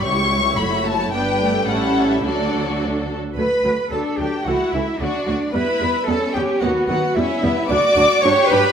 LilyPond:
<<
  \new Staff \with { instrumentName = "Violin section" } { \time 2/4 \key d \major \tempo 4 = 111 cis'''4 b''8 a''8 | g''4 fis''8. e''16 | d''4 r4 | b''4 a''8 g''8 |
fis''8 e''8 d''4 | b''4 a''8 g''8 | fis''8 fis''8 e''4 | d'''4 cis'''8 b''8 | }
  \new Staff \with { instrumentName = "Cello section" } { \time 2/4 \key d \major cis,4 fis,4 | g,4 a,4 | d4. r8 | b'4 a'8 g'8 |
fis'8 e'8 d'4 | b'4 a'8 g'8 | fis'8 fis'8 e'4 | d''4 cis''8 b'8 | }
  \new Staff \with { instrumentName = "Violin section" } { \time 2/4 \key d \major << { cis''2 | b'4 a'4 | a'4. r8 | r4 d'4 |
e'4 fis'8 fis'8 | e'4 cis'4 | b4 cis'8 b8 | fis'4 g'4 | } \\ { g'4 fis'4 | g'4 e'4 | fis'4. r8 | r2 |
r2 | r2 | r2 | r2 | } >> }
  \new Staff \with { instrumentName = "Viola section" } { \time 2/4 \key d \major << { e'2 | d'4 cis'4 | d'4. r8 | a8 a8 a8 a8 |
a8 a8 a8 a8 | b8 b8 b8 b8 | b8 b8 b8 b8 | d'8 d'8 d'8 d'8 | } \\ { g4 a4 | b8 a8 g4 | fis4. r8 | fis8 fis8 fis8 fis8 |
e8 e8 fis8 fis8 | g8 g8 g8 g8 | fis8 fis8 g8 g8 | fis8 fis8 fis8 fis8 | } >> }
  \new Staff \with { instrumentName = "Double bass section" } { \clef bass \time 2/4 \key d \major cis,4 fis,,4 | g,,4 a,,4 | d,4. r8 | d,8 d,8 d,8 d,8 |
cis,8 cis,8 d,8 d,8 | e,8 e,8 e,8 e,8 | dis,8 dis,8 e,8 e,8 | d,8 d,8 g,8 g,8 | }
>>